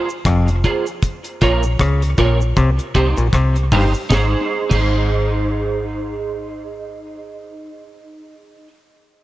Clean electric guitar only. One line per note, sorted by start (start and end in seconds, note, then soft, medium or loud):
0.64 0.84 F4 medium
0.64 0.85 G#4 medium
0.64 0.85 C5 medium
1.41 1.61 F4 medium
1.41 1.62 A#4 medium
1.41 1.62 C#5 medium
2.18 2.38 F4 medium
2.18 2.38 A#4 medium
2.18 2.39 C#5 medium
2.95 3.15 D#4 loud
2.95 3.15 G4 medium
2.95 3.16 C5 medium
3.72 3.92 D#4 medium
3.72 3.92 G4 medium
3.72 3.93 C5 medium
4.09 4.69 D#4 medium
4.09 4.72 G#4 medium
4.14 4.74 C5 loud
4.69 8.67 D#4 medium
4.69 8.69 G#4 medium
4.75 8.70 C5 loud